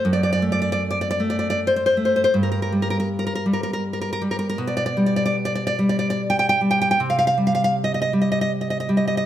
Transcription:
0.05 2.29 F#2 medium
0.13 0.22 D5 medium
0.23 0.31 D5 medium
0.33 0.43 D5 medium
0.42 1.19 A3 soft
0.52 0.60 D5 medium
0.62 0.71 D5 medium
0.72 0.82 D5 medium
0.91 1.00 D5 medium
1.01 1.09 D5 medium
1.11 1.21 D5 medium
1.20 1.96 A3 soft
1.30 1.38 D5 medium
1.39 1.49 D5 medium
1.50 1.59 D5 medium
1.67 1.75 C5 medium
1.76 1.85 C5 medium
1.86 1.96 C5 medium
1.97 2.30 A3 medium
2.05 2.15 C5 medium
2.16 2.23 C5 medium
2.24 2.34 C5 medium
2.34 4.55 G2 medium
2.43 2.50 A#4 medium
2.52 2.61 A#4 medium
2.62 2.71 A#4 medium
2.72 3.45 G3 medium
2.82 2.89 A#4 medium
2.90 2.99 A#4 medium
3.00 3.09 A#4 medium
3.19 3.25 A#4 medium
3.27 3.34 A#4 medium
3.35 3.45 A#4 medium
3.46 4.20 G3 medium
3.53 3.62 A#4 medium
3.63 3.72 A#4 medium
3.73 3.83 A#4 medium
3.93 4.00 A#4 medium
4.01 4.12 A#4 medium
4.13 4.22 A#4 medium
4.22 4.55 G3 medium
4.31 4.38 A#4 medium
4.39 4.48 A#4 medium
4.49 4.59 A#4 medium
4.58 6.95 B2 medium
4.67 4.76 D5 medium
4.77 4.85 D5 medium
4.86 4.96 D5 medium
4.97 5.78 G3 medium
5.06 5.15 D5 medium
5.16 5.24 D5 medium
5.26 5.36 D5 medium
5.45 5.54 D5 medium
5.55 5.66 D5 medium
5.67 5.78 D5 medium
5.79 6.60 G3 medium
5.89 5.98 D5 medium
5.99 6.09 D5 medium
6.10 6.21 D5 medium
6.30 6.38 G5 medium
6.39 6.48 G5 medium
6.49 6.60 G5 loud
6.61 6.95 G3 medium
6.71 6.80 G5 medium
6.82 6.90 G5 medium
6.91 7.00 G5 loud
7.00 9.25 C3 medium
7.10 7.17 F5 medium
7.19 7.26 F5 medium
7.27 7.36 F5 medium
7.38 8.12 G3 medium
7.47 7.54 F5 medium
7.55 7.63 F5 medium
7.64 7.74 F5 medium
7.84 7.93 D#5 medium
7.94 8.00 D#5 medium
8.02 8.12 D#5 medium
8.13 8.88 G3 medium
8.22 8.30 D#5 medium
8.32 8.40 D#5 medium
8.41 8.51 D#5 medium
8.61 8.69 D#5 medium
8.70 8.79 D#5 medium
8.80 8.90 D#5 medium
8.89 9.24 G3 medium
8.97 9.06 D#5 medium
9.07 9.16 D#5 medium
9.17 9.26 D#5 medium

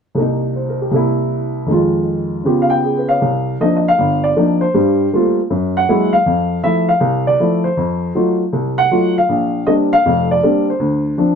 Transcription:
0.15 0.89 C2 medium
0.15 0.91 C3 soft
0.15 0.93 A#3 soft
0.20 0.95 D#4 medium
0.56 0.79 C5 soft
0.69 0.88 A#4 soft
0.82 1.01 G4 soft
0.91 1.68 C2 medium
0.91 1.69 C3 soft
0.91 1.70 A#3 soft
0.96 1.71 E4 medium
1.66 2.44 F2 soft
1.66 2.45 D#3 soft
1.70 2.46 G#3 soft
1.70 2.44 F4 medium
2.44 3.21 C#3 medium
2.44 3.22 B3 soft
2.44 3.22 F4 soft
2.44 3.22 G4 medium
2.62 2.71 F5 medium
2.70 3.06 G5 medium
2.84 3.07 G#4 soft
2.97 3.17 B4 soft
3.09 3.29 C#5 soft
3.09 3.61 F5 medium
3.21 3.55 C2 medium
3.60 3.86 F3 soft
3.60 3.87 A#3 soft
3.60 3.87 C4 soft
3.60 3.87 D4 soft
3.60 3.87 D#4 medium
3.60 3.75 D#5 medium
3.76 3.85 D#5 medium
3.88 4.26 F5 medium
3.98 4.31 G1 medium
4.24 4.62 D5 medium
4.36 4.62 F3 soft
4.36 4.62 A#3 soft
4.36 4.63 C4 soft
4.36 4.63 D4 soft
4.36 4.63 D#4 medium
4.61 5.33 C5 medium
4.74 5.07 G2 medium
4.74 5.07 G3 medium
5.13 5.39 G3 soft
5.13 5.39 A3 soft
5.13 5.39 A#3 soft
5.13 5.39 C4 soft
5.13 5.40 F4 medium
5.50 5.83 F#2 medium
5.77 6.11 F#5 medium
5.89 6.15 F#3 soft
5.89 6.15 G#3 soft
5.89 6.15 A#3 soft
5.89 6.15 E4 medium
6.13 6.60 F5 medium
6.26 6.59 F2 medium
6.64 6.90 F3 soft
6.64 6.90 A3 soft
6.64 6.90 E4 medium
6.64 6.89 E5 medium
6.89 7.24 F5 medium
7.00 7.34 C2 medium
7.27 7.66 D5 medium
7.39 7.66 F3 medium
7.39 7.66 A3 soft
7.39 7.66 E4 medium
7.64 8.36 C5 medium
7.77 8.10 F2 medium
8.15 8.41 F#3 medium
8.15 8.42 A3 soft
8.15 8.42 D#4 soft
8.15 8.42 F4 medium
8.53 8.86 C2 medium
8.78 9.13 F#5 medium
8.91 9.17 F#3 soft
8.91 9.17 A3 soft
8.91 9.18 D#4 soft
8.91 9.18 F4 medium
9.18 9.65 F5 medium
9.29 9.62 A#1 medium
9.67 9.93 G3 soft
9.67 9.93 A#3 soft
9.67 9.93 C4 soft
9.67 9.94 D4 medium
9.67 9.72 D#5 medium
9.93 10.28 F5 loud
10.05 10.38 F1 medium
10.05 10.38 F2 medium
10.31 10.66 D5 medium
10.43 10.69 G3 medium
10.43 10.69 A#3 soft
10.43 10.70 C4 soft
10.43 10.69 D4 soft
10.70 11.35 C5 medium
10.80 11.13 D2 medium
11.18 11.35 F3 soft
11.18 11.35 C4 soft
11.18 11.35 D4 medium

